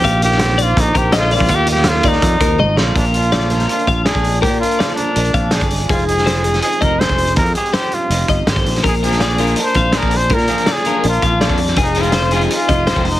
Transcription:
<<
  \new Staff \with { instrumentName = "Clean electric guitar" } { \time 4/4 \key bes \mixolydian \tempo 4 = 164 f''4 r8 d''4 bes'8 ees''8 d''8 | f''4 r8 d''4 bes'8 ees''8 d''8 | bes'4 d''8 bes'4 f''8 d''4 | bes'4 d''8 bes'4 f''8 d''4 |
aes'4 c''8 aes'4 ees''8 c''4 | r4 c''8 r4 ees''8 c''4 | bes'4 d''8 bes'4 f''8 d''4 | bes'4 d''8 bes'4 f''8 d''4 |
aes'4 c''8 aes'4 ees''8 c''4 | }
  \new Staff \with { instrumentName = "Trumpet" } { \time 4/4 \key bes \mixolydian g'8 g'4 f'8 ees'8 g'8 f'8 f'8 | g'8 g'8 f'8 ees'2 r8 | d'8 f'4. f'4 aes'4 | g'8 f'4 d'2 r8 |
f'8 aes'4. aes'8 bes'8 c''4 | bes'8 aes'8 g'8 f'4~ f'16 r4 r16 | aes'8 aes'4. c''4 bes'8 c''8 | bes'4 aes'4 f'4. r8 |
ees'8 f'4 f'8 f'4. ees'8 | }
  \new Staff \with { instrumentName = "Overdriven electric guitar" } { \time 4/4 \key bes \mixolydian r1 | r1 | r1 | r1 |
r1 | r1 | r8 <f bes d' f'>8 r8 <f bes d' f'>8 r4 <f bes d' f'>8 r8 | r8 <f bes d' f'>8 r8 <f bes d' f'>8 r4 <f bes d' f'>8 r8 |
r8 <f aes c' ees'>8 r8 <f aes c' ees'>8 r4 <f aes c' ees'>8 r8 | }
  \new Staff \with { instrumentName = "Clean electric guitar" } { \time 4/4 \key bes \mixolydian << { f'4 c'8 c'4 c'8 aes4 | <ees bes f'>4 bes8 f'16 g'16 r4 ees'8 f'8~ | f'8 d'4. d'4 d'4 | r8 d'4. d'4 aes'4 |
<f aes ees'>8 ees'4. ees'4 aes'4 | r8 g'4. ees'4 g'4 | r8 c'16 d'4~ d'16 d'4 aes'4 | r8 aes'4. d'4 d'4 |
r8 ees'4. ees'4 ees'4 | } \\ { bes,8 ees4. f,4. ees8 | ees,8 ees4. f,8 f4. | bes,4 f4. f,4. | bes,4 f4. f,4. |
f,4 f4. c4. | f,4 f4. c4. | bes,4 f4. f,4. | bes,4 f4. f,4. |
f,4 f4. c4. | } >> }
  \new Staff \with { instrumentName = "Fingered electric bass" } { \clef bass \time 4/4 \key bes \mixolydian bes,,2 bes,,8 bes,,4~ bes,,16 bes,,16 | ees,4. ees,8 f,8 ees,8 aes,,8 bes,,8 | bes,,2 r8 bes,,8. bes,,8. | bes,8 r4. bes,,8 bes,,8. g,,8. |
f,,2 r8 f,,8. f,,8. | f,8 r4. f,,8 g,,8 aes,,8 bes,,8 | bes,,2 r8 bes,,8. bes,,8. | bes,8 r4. bes,,8 bes,,8. f,8. |
f,,2 r8 f,,8. f,,8. | }
  \new DrumStaff \with { instrumentName = "Drums" } \drummode { \time 4/4 <hh bd>8 hh16 sn16 <hh sn>16 sn16 hh8 <hh bd>8 <hh bd>8 <hh sn>8 hho16 bd16 | <hh bd>8 hh16 sn16 <hh sn>16 sn16 <hh bd>16 sn16 <hh bd>8 <hh bd>8 tommh8 sn8 | <hh bd>16 hh16 hh16 hh16 <hh sn>16 hh16 <hh sn>16 <hh sn>16 hh16 hh16 <hh bd>8 <hh sn>16 <hh bd>16 hho16 hh16 | <hh bd>16 hh16 hh16 hh16 <hh sn>16 hh16 hh8 hh16 hh16 <hh bd>8 <hh sn>16 <hh bd>16 hho16 hh16 |
<hh bd>16 hh16 hh16 <hh sn>16 <hh sn>16 hh16 hh16 <hh sn>16 hh16 hh16 <hh bd>8 <hh sn>16 <hh bd>16 hho16 hh16 | <hh bd>16 hh16 hh16 hh16 <hh sn>16 hh16 hh8 hh16 hh16 <hh bd>8 <hh sn>16 <hh bd>16 hho16 <hh sn>16 | <hh bd>16 hh16 hh16 <hh sn>16 <hh sn>16 hh16 hh16 hh16 hh16 hh16 <hh bd>8 <hh sn>16 <hh bd>16 hho16 hh16 | <hh bd>16 <hh sn>16 hh16 hh16 <hh sn>16 hh16 hh8 hh16 hh16 <hh bd>8 <hh sn>16 <hh bd>16 hho16 <hh sn>16 |
<hh bd>16 hh16 hh16 hh16 <hh sn>16 hh16 hh16 hh16 hh16 hh16 <hh bd>8 <hh sn>16 <hh bd>16 hho16 hh16 | }
>>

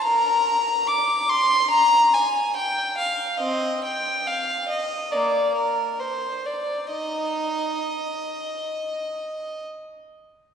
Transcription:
\new Staff \with { instrumentName = "Violin" } { \time 4/4 \key ees \major \tempo 4 = 70 << { bes''4 d'''8 c'''8 bes''8 aes''8 g''8 f''8 | ees''8 g''8 f''8 ees''8 d''8 bes'8 c''8 d''8 | ees''2. r4 | } \\ { bes'4 r2. | c'8 r4. bes8 r4. | ees'4. r2 r8 | } >> }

